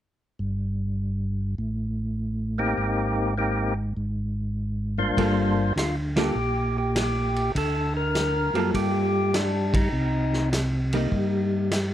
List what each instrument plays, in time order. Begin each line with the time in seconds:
0.39 tonewheel organ G1
1.58 tonewheel organ A1
2.58 tonewheel organ A#3 C4 D#4 G4
2.78 tonewheel organ G#1
3.38 tonewheel organ A#3 C4 D#4 G4
3.97 tonewheel organ G#1
4.98 tonewheel organ G2 A#3 D4 F4 C5
5.17 tonewheel organ G1, hollow-body jazz guitar G3 A#3 F4 A4, kick, ride
5.76 tonewheel organ D2 F4, snare, hi-hat pedal, ride
6.16 hollow-body jazz guitar G3 A#3 F4 A4, tonewheel organ G4, snare, ride
6.35 tonewheel organ A#1
6.78 tonewheel organ G4
6.96 snare, hi-hat pedal, ride
7.36 ride
7.55 tonewheel organ D2 A4, kick, ride
7.97 tonewheel organ A#4
8.15 snare, hi-hat pedal, ride
8.54 tonewheel organ F#2, hollow-body jazz guitar G3 A#3 F4 A4, ride
8.74 tonewheel organ G2 G4, kick, ride
9.34 tonewheel organ D4, snare, hi-hat pedal, ride
9.74 tonewheel organ D#4, kick, ride
9.92 tonewheel organ C2
10.33 snare
10.53 snare, hi-hat pedal, ride
10.93 hollow-body jazz guitar G3 A#3 D#4, ride
11.11 tonewheel organ G2, kick
11.71 snare, hi-hat pedal, ride